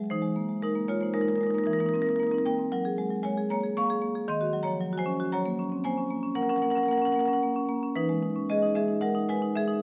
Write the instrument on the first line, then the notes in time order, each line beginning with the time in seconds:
marimba
0.10 E3 D#4 C5
0.22 G#3
0.36 A#3
0.49 G#3
0.62 G#3 D#4 A#4
0.75 A#3
0.88 G#3 F4 C#5
1.01 A#3 D#4 C5
1.14 G#3 D#4 A#4
1.21 D#4 A#4
1.28 A#3 D#4 A#4
1.35 D#4 A#4
1.41 G#3 A#4
1.47 D#4 A#4
1.54 A#3 D#4
1.58 A#4
1.64 E3 D#4 A#4
1.71 D#4 A#4
1.79 A#3 D#4 A#4
1.86 D#4 A#4
1.94 C4 D#4 A#4
2.02 D#4 A#4
2.07 A#3 D#4 A#4
2.16 A#3 D#4 A#4
2.23 D#4 A#4
2.31 C4 D#4 A#4
2.38 A#4
2.46 A#3 A#4 G5
2.59 C4
2.72 F#3 A#4 F#5
2.85 G#4
2.98 G#3
3.11 F#3
3.23 G#3 C#5 G#5
3.37 G#4
3.50 A#3 C#5 A#5
3.63 G#4
3.77 A#3 F5 C#6
3.90 G#4
4.02 A#3
4.15 G#4
4.28 D#3 D#5 C6
4.41 F#4
4.53 F#3
4.63 C#5 A#5
4.67 F3
4.80 F#3
4.93 F#4
4.97 C5 G#5
5.06 C#4
5.20 F#4
5.32 F#3 C#5 A#5
5.46 A#3
5.59 C#4
5.72 C4
5.84 A#3 C5 G#5
5.98 C#4
6.10 A#3
6.23 C#4
6.35 A#3 A#4 F#5
6.42 A#4 F#5
6.49 C#4 A#4 F#5
6.56 A#4 F#5
6.62 A#3 A#4 F#5
6.70 A#4 F#5
6.75 C#4 A#4 F#5
6.83 A#4 F#5
6.88 A#3 F#5
6.93 A#4
6.98 A#4 F#5
7.02 C#4 F#5
7.07 A#4
7.12 A#3 A#4 F#5
7.19 A#4 F#5
7.25 C#4 A#4 F#5
7.33 F#5
7.43 A#3
7.56 C#4
7.69 A#3
7.83 C#4
7.96 E3 D#4 B4
8.09 G#3
8.23 D#4
8.36 C#4
8.50 G#3 G#4 D#5
8.62 D#4
8.75 G#3 G#4 E5
8.88 D#4
9.01 G#3 A#4 F#5
9.15 D#4
9.29 G#3 B4 G#5
9.42 D#4
9.55 G#3 G#4 E5
9.68 D#4